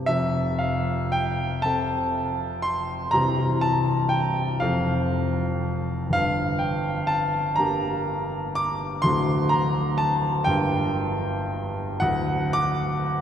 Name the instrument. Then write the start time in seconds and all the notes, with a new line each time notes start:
grand piano
0.06 F1 F2 E5
0.59 F5
1.12 G5
1.62 C3 C4 A4 A5
2.62 C6
3.11 C1 C2 E3 C4 G4 A#5
3.61 A5
4.09 G5
4.60 F1 F2 F3 C4 A4 F5
6.10 G1 F5
6.15 G2
6.59 G5
7.07 A5
7.56 D3 A#3 G4 A#5
8.55 D6
9.02 D1 D2 D3 A3 F#4 C6
9.49 A#5
9.98 A5
10.44 G1 G2 D3 A#3 G4 G5
12.00 D1 D2 F#5
12.53 D6